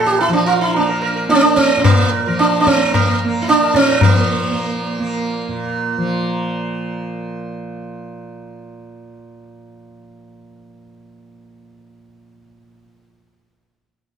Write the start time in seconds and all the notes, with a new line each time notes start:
Already playing: A#2 F3 A#3
0.06 G4
0.19 E4, tabla tin
0.28 F3
0.33 D4
0.46 F4, tabla na
0.61 E4
0.74 D4, tabla tin
0.78 A#3
0.89 A#4
1.02 A#4, tabla na
1.16 A#4
1.28 A#3 D4, tabla te
1.35 C4
1.41 D4
1.56 C4, tabla ke
1.77 A#2 C4
1.84 A#3, tabla na, tabla ge
2.12 A#4
2.26 F3 A#4
2.39 D4, tabla te
2.60 D4
2.67 C4, tabla ke
2.75 A#3
2.94 A#3, tabla na, tabla ge
3.07 A#4
3.25 A#3
3.42 E4
3.48 D4, tabla te
3.63 A#4
3.73 A#2 C4, tabla ke
3.90 A#4
4.01 F3 A#3, tabla na, tabla ge
4.51 A#3
4.99 A#3
5.48 A#2
5.97 F3